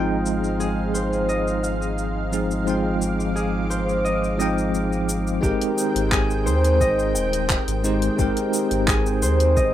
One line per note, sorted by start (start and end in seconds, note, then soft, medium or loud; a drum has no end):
0.00 5.39 G#1 medium
0.00 2.27 F3 medium
0.00 2.28 G#3 medium
0.00 5.38 G#3 medium
0.00 2.29 C4 medium
0.00 2.29 D#4 medium
0.00 5.38 D#4 medium
0.00 2.43 F4 medium
0.00 0.16 C5 medium
0.00 2.62 C5 medium
0.00 0.31 D#5 medium
0.00 5.39 F5 medium
0.00 0.42 G5 medium
0.00 2.30 G5 medium
0.26 cabasa medium
0.44 cabasa soft
0.60 2.87 G#4 medium
0.60 cabasa soft
0.94 2.92 C5 medium
0.94 cabasa medium
1.13 cabasa soft
1.29 3.07 D#5 medium
1.29 cabasa soft
1.48 cabasa soft
1.63 3.29 F5 medium
1.63 cabasa medium
1.82 cabasa soft
1.98 cabasa soft
2.31 2.63 F3 medium
2.31 2.63 G#3 medium
2.31 2.63 C4 medium
2.31 2.63 D#4 medium
2.31 2.64 G#4 medium
2.31 cabasa medium
2.51 cabasa soft
2.65 4.34 F3 medium
2.65 4.35 G#3 medium
2.65 4.36 C4 medium
2.65 4.36 D#4 medium
2.65 5.19 F4 medium
2.65 5.40 D6 medium
2.65 cabasa soft
2.69 4.37 G5 medium
3.02 cabasa medium
3.20 cabasa soft
3.36 5.48 G#4 medium
3.36 cabasa soft
3.70 5.68 C5 medium
3.70 cabasa medium
3.89 cabasa soft
4.04 4.38 D#5 medium
4.04 cabasa soft
4.24 cabasa soft
4.37 5.38 F3 medium
4.37 5.38 G#3 medium
4.37 5.39 C4 medium
4.37 5.40 D#4 medium
4.37 6.17 D#5 medium
4.37 cabasa medium
4.42 5.40 G5 medium
4.58 cabasa soft
4.74 cabasa soft
4.93 cabasa soft
5.09 cabasa medium
5.27 cabasa soft
5.41 5.55 G#1 medium
5.41 9.74 D#3 medium
5.41 7.79 G#3 medium
5.41 9.74 G#3 medium
5.41 7.80 C4 medium
5.41 9.74 C4 medium
5.41 7.80 D#4 medium
5.41 6.17 G4 medium
5.41 9.74 G5 medium
5.41 7.81 G5 medium
5.41 kick loud
5.41 cabasa soft
5.45 7.82 A#4 loud
5.62 closed hi-hat soft
5.62 cabasa soft
5.78 cabasa medium
5.95 6.47 G#1 medium
5.95 closed hi-hat medium
5.95 cabasa soft
6.11 7.21 G#4 loud
6.11 kick loud
6.11 clap loud
6.11 cabasa soft
6.31 cabasa soft
6.46 6.82 D#2 loud
6.46 8.44 C5 medium
6.46 cabasa medium
6.64 closed hi-hat medium
6.64 cabasa soft
6.80 7.17 G#1 medium
6.80 8.59 D#5 medium
6.80 kick loud
6.80 cabasa soft
6.99 cabasa soft
7.15 7.57 D#1 medium
7.15 8.70 G5 medium
7.15 cabasa medium
7.33 closed hi-hat medium
7.33 cabasa soft
7.49 kick loud
7.49 clap loud
7.49 cabasa soft
7.68 8.09 G#1 medium
7.68 closed hi-hat soft
7.68 cabasa soft
7.83 8.14 G#3 medium
7.83 8.15 C4 medium
7.83 8.15 D#4 medium
7.83 8.15 G4 medium
7.83 8.15 C5 medium
7.83 cabasa medium
8.02 closed hi-hat medium
8.02 cabasa soft
8.17 8.30 G#1 medium
8.17 9.74 G#3 medium
8.17 9.74 C4 medium
8.17 9.74 D#4 medium
8.17 8.94 G4 medium
8.17 9.74 G5 medium
8.17 kick loud
8.17 cabasa soft
8.21 9.74 A#4 medium
8.37 closed hi-hat soft
8.37 cabasa soft
8.53 cabasa medium
8.71 9.23 G#1 medium
8.71 closed hi-hat medium
8.71 cabasa soft
8.88 9.74 G#4 loud
8.88 kick loud
8.88 clap loud
8.88 cabasa soft
9.06 cabasa soft
9.22 9.58 D#2 loud
9.22 9.74 C5 loud
9.22 cabasa medium
9.40 closed hi-hat medium
9.40 cabasa soft
9.56 9.74 G#1 medium
9.56 9.74 D#5 medium
9.56 kick loud
9.56 cabasa soft